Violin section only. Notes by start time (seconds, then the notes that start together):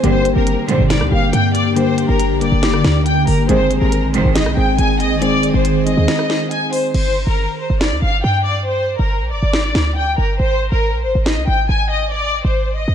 0.04 C5
0.36 A#4
0.69 C5
0.90 D5
1.12 F5
1.33 G5
1.55 D5
1.77 C5
2.09 A#4
2.41 D5
3.06 G5
3.27 A#4
3.49 C5
3.81 A#4
4.14 C5
4.35 D#5
4.57 G5
4.78 G#5
5.00 D#5
5.22 D5
5.54 C5
5.87 D#5
6.51 G#5
6.73 C5
6.95 C5
7.27 A#4
7.59 C5
7.81 D5
8.02 F5
8.24 G5
8.45 D5
8.67 C5
8.99 A#4
9.32 D5
9.97 G5
10.18 A#4
10.40 C5
10.72 A#4
11.04 C5
11.26 D#5
11.48 G5
11.69 G#5
11.91 D#5
12.12 D5
12.45 C5
12.77 D#5